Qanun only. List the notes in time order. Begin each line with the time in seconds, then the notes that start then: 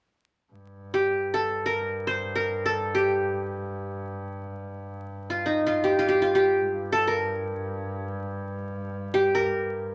0.94 G4
1.34 A4
1.66 A#4
2.07 C5
2.35 A#4
2.66 A4
2.95 G4
5.30 F4
5.46 D#4
5.67 F4
5.84 G4
5.99 F4
6.09 G4
6.22 F4
6.35 G4
6.92 A4
7.08 A#4
9.14 G4
9.35 A#4